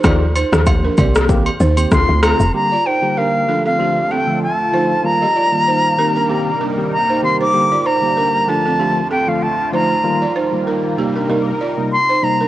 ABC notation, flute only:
X:1
M:4/4
L:1/16
Q:"Swing 16ths" 1/4=96
K:Gm
V:1 name="Flute"
z12 c'2 b2 | b2 g2 f3 f3 g2 a4 | b8- b2 z2 b2 c' d'- | d'2 b4 a4 g f a2 b2- |
b2 z8 z2 c'2 b2 |]